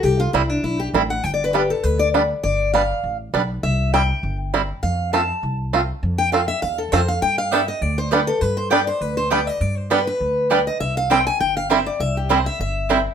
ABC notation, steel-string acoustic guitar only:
X:1
M:4/4
L:1/8
Q:"Swing" 1/4=201
K:Gmix
V:1 name="Steel-string acoustic guitar"
G F E D E G z ^f | (3g d B G A B d z2 | d2 f3 z3 | e2 g3 z3 |
f2 a3 z3 | z g f e f A c f | g f e _e d c B A | B c d c B c d _e |
d c B B3 z _e | e f g _a g f e d | e G c e e3 z |]